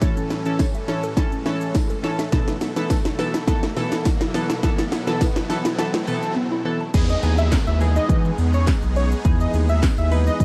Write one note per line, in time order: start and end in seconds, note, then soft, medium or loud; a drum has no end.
0.00 2.29 A2 medium
0.00 2.29 E3 medium
0.00 0.22 E3 medium
0.00 0.12 A3 medium
0.00 2.29 C#4 medium
0.00 0.22 C#4 medium
0.00 6.90 A4 medium
0.00 0.22 A4 loud
0.00 kick loud
0.00 snare loud
0.00 closed hi-hat medium
0.00 riser medium
0.00 shaker medium
0.17 0.26 C#4 medium
0.17 closed hi-hat medium
0.17 shaker medium
0.30 0.41 E4 medium
0.30 snare medium
0.30 shaker medium
0.45 0.65 E3 medium
0.45 0.65 C#4 medium
0.45 0.65 A4 loud
0.45 closed hi-hat soft
0.45 shaker medium
0.59 0.70 C#5 medium
0.59 kick loud
0.59 snare medium
0.59 closed hi-hat medium
0.59 tambourine medium
0.59 shaker medium
0.75 0.84 E5 medium
0.75 closed hi-hat medium
0.75 shaker medium
0.88 1.02 E3 medium
0.88 1.02 C#4 medium
0.88 1.02 A4 loud
0.88 0.98 C#5 medium
0.88 snare medium
0.88 shaker soft
1.03 1.13 A4 medium
1.03 closed hi-hat medium
1.03 shaker medium
1.17 1.31 E3 medium
1.17 1.31 C#4 medium
1.17 1.27 E4 loud
1.17 1.31 A4 loud
1.17 kick loud
1.17 snare loud
1.17 closed hi-hat medium
1.17 shaker medium
1.32 1.41 C#4 medium
1.32 closed hi-hat soft
1.32 shaker soft
1.46 1.72 E3 medium
1.46 1.56 A3 medium
1.46 1.72 C#4 medium
1.46 1.73 A4 loud
1.46 snare loud
1.46 shaker medium
1.61 closed hi-hat soft
1.61 shaker medium
1.74 1.85 E4 medium
1.74 kick loud
1.74 snare loud
1.74 closed hi-hat medium
1.74 tambourine medium
1.74 shaker medium
1.90 1.99 A4 medium
1.90 closed hi-hat soft
1.90 shaker soft
2.03 2.17 E3 medium
2.03 2.18 C#4 medium
2.03 2.18 A4 loud
2.03 2.14 C#5 medium
2.03 snare loud
2.03 shaker soft
2.19 2.28 E5 medium
2.19 snare loud
2.19 closed hi-hat medium
2.19 shaker medium
2.32 2.43 B2 medium
2.32 6.90 B2 medium
2.32 2.53 E3 medium
2.32 6.90 F#3 medium
2.32 2.53 B3 medium
2.32 6.90 E4 medium
2.32 2.53 A4 loud
2.32 kick loud
2.32 snare loud
2.32 closed hi-hat medium
2.32 shaker medium
2.48 2.57 A3 medium
2.48 snare loud
2.48 closed hi-hat medium
2.48 shaker medium
2.61 2.71 B3 medium
2.61 snare loud
2.61 open hi-hat medium
2.61 shaker medium
2.76 2.96 E3 medium
2.76 2.96 B3 medium
2.76 2.96 A4 loud
2.76 snare loud
2.76 closed hi-hat soft
2.76 shaker medium
2.90 3.00 B4 medium
2.90 kick loud
2.90 snare loud
2.90 closed hi-hat medium
2.90 tambourine medium
2.90 shaker medium
3.05 3.14 A5 medium
3.05 snare loud
3.05 closed hi-hat medium
3.05 shaker medium
3.19 3.33 E3 medium
3.19 3.33 B3 medium
3.19 3.33 A4 loud
3.19 3.29 B4 medium
3.19 snare loud
3.19 open hi-hat medium
3.19 shaker medium
3.34 3.43 E4 medium
3.34 snare loud
3.34 closed hi-hat medium
3.34 shaker medium
3.48 3.62 E3 medium
3.48 3.58 B3 loud
3.48 3.62 B3 medium
3.48 3.62 A4 loud
3.48 kick loud
3.48 snare loud
3.48 closed hi-hat medium
3.48 shaker medium
3.63 3.72 A3 medium
3.63 snare loud
3.63 closed hi-hat soft
3.63 shaker soft
3.76 3.87 B2 medium
3.76 4.03 E3 loud
3.76 4.03 B3 medium
3.76 4.03 A4 loud
3.76 snare loud
3.76 open hi-hat medium
3.76 shaker medium
3.92 snare loud
3.92 closed hi-hat soft
3.92 shaker medium
4.05 4.16 B3 medium
4.05 kick loud
4.05 snare loud
4.05 closed hi-hat medium
4.05 tambourine medium
4.05 shaker medium
4.21 4.30 E4 medium
4.21 snare loud
4.21 closed hi-hat soft
4.21 shaker soft
4.34 4.48 E3 medium
4.34 4.48 B3 medium
4.34 4.49 A4 loud
4.34 4.45 B4 medium
4.34 snare loud
4.34 open hi-hat medium
4.34 shaker soft
4.50 4.59 A5 medium
4.50 snare loud
4.50 closed hi-hat medium
4.50 shaker medium
4.63 4.83 E3 medium
4.63 4.84 B3 medium
4.63 4.84 A4 loud
4.63 kick loud
4.63 snare loud
4.63 closed hi-hat medium
4.63 shaker medium
4.78 4.88 A3 medium
4.78 snare loud
4.78 closed hi-hat medium
4.78 shaker medium
4.92 5.02 B3 medium
4.92 snare loud
4.92 open hi-hat medium
4.92 shaker medium
5.07 5.26 E3 medium
5.07 5.27 B3 medium
5.07 5.27 A4 loud
5.07 snare loud
5.07 closed hi-hat soft
5.07 shaker medium
5.21 5.31 B4 loud
5.21 kick loud
5.21 snare loud
5.21 closed hi-hat medium
5.21 tambourine medium
5.21 shaker medium
5.36 5.45 A5 medium
5.36 snare loud
5.36 closed hi-hat medium
5.36 shaker medium
5.49 5.64 E3 medium
5.49 5.64 B3 medium
5.49 5.64 A4 loud
5.49 5.60 B4 medium
5.49 snare loud
5.49 open hi-hat medium
5.49 shaker medium
5.65 5.74 E4 medium
5.65 snare loud
5.65 closed hi-hat medium
5.65 shaker medium
5.78 5.92 E3 medium
5.78 5.93 B3 medium
5.78 5.89 B3 medium
5.78 5.93 A4 loud
5.78 snare loud
5.78 closed hi-hat medium
5.78 shaker medium
5.94 6.03 A3 medium
5.94 snare loud
5.94 closed hi-hat soft
5.94 shaker soft
6.07 6.18 B2 medium
6.07 6.34 E3 loud
6.07 6.34 B3 medium
6.07 6.34 A4 loud
6.07 open hi-hat medium
6.07 shaker medium
6.23 closed hi-hat soft
6.23 shaker medium
6.36 6.47 B3 medium
6.52 6.61 E4 medium
6.65 6.79 E3 medium
6.65 6.79 B3 medium
6.65 6.79 A4 loud
6.65 6.75 B4 medium
6.81 6.90 A5 medium
6.94 7.16 E2 loud
6.94 7.08 E3 medium
6.94 10.45 G#3 medium
6.94 7.08 B3 medium
6.94 10.45 B3 medium
6.94 10.45 D#4 medium
6.94 7.08 D#4 medium
6.94 10.45 G#4 medium
6.94 7.08 G#4 medium
6.94 kick loud
6.94 closed hi-hat medium
6.94 crash loud
6.94 downlifter medium
6.94 shaker medium
7.09 7.21 D#5 medium
7.09 shaker medium
7.23 7.56 D#2 medium
7.23 7.49 E3 medium
7.23 7.49 B3 medium
7.23 7.50 D#4 medium
7.23 7.50 G#4 medium
7.23 open hi-hat medium
7.23 shaker medium
7.38 7.50 E5 medium
7.38 shaker medium
7.52 kick loud
7.52 snare loud
7.52 clap loud
7.52 closed hi-hat medium
7.52 tambourine medium
7.52 shaker medium
7.67 7.99 D#2 loud
7.67 7.78 E5 medium
7.67 shaker medium
7.80 8.34 E3 medium
7.80 8.34 B3 medium
7.80 8.34 D#4 medium
7.80 8.34 G#4 medium
7.80 open hi-hat medium
7.80 shaker medium
7.96 8.07 D#5 medium
7.96 shaker medium
8.09 8.31 E3 loud
8.09 8.22 D#5 medium
8.09 kick loud
8.09 closed hi-hat medium
8.09 shaker medium
8.25 shaker soft
8.38 8.71 E2 loud
8.38 open hi-hat medium
8.38 shaker medium
8.53 8.65 C#5 medium
8.53 shaker medium
8.67 kick loud
8.67 snare loud
8.67 clap loud
8.67 closed hi-hat medium
8.67 tambourine medium
8.67 shaker medium
8.82 9.14 B1 medium
8.82 shaker soft
8.96 9.09 C#5 loud
8.96 open hi-hat medium
8.96 shaker soft
9.11 shaker medium
9.25 9.47 E2 loud
9.25 9.65 E3 medium
9.25 9.65 B3 medium
9.25 9.65 D#4 medium
9.25 9.65 G#4 medium
9.25 kick loud
9.25 closed hi-hat medium
9.25 shaker medium
9.40 9.52 D#5 medium
9.40 shaker medium
9.54 9.87 D#2 loud
9.54 open hi-hat medium
9.54 shaker medium
9.69 9.80 E5 medium
9.69 shaker medium
9.83 kick loud
9.83 snare loud
9.83 clap loud
9.83 closed hi-hat medium
9.83 tambourine medium
9.83 shaker medium
9.98 10.30 D#2 loud
9.98 10.09 E5 medium
9.98 shaker medium
10.11 10.44 E3 medium
10.11 10.45 B3 medium
10.11 10.45 D#4 medium
10.11 10.45 B4 medium
10.11 open hi-hat medium
10.11 shaker soft
10.27 10.38 D#5 medium
10.27 shaker medium
10.40 10.45 E3 loud
10.40 10.45 D#5 medium
10.40 kick loud
10.40 closed hi-hat medium
10.40 shaker medium